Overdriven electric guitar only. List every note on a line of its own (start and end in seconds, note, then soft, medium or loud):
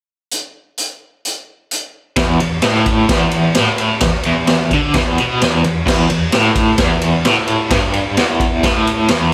2.17 2.39 E2 loud
2.42 2.59 E2 medium
2.64 3.09 A2 loud
3.09 3.54 E2 loud
3.57 4.02 A2 loud
4.03 4.21 E2 medium
4.26 4.71 E2 loud
4.74 4.95 D3 loud
4.98 5.18 E2 loud
5.20 5.41 B2 loud
5.43 5.64 E2 loud
5.66 5.83 E2 medium
5.86 6.08 E2 loud
6.11 6.28 E2 medium
6.34 6.78 A2 loud
6.80 7.24 E2 loud
7.26 7.70 A2 loud
7.72 8.17 G2 loud
8.19 8.63 E2 loud
8.64 9.09 A2 loud
9.11 9.34 E2 loud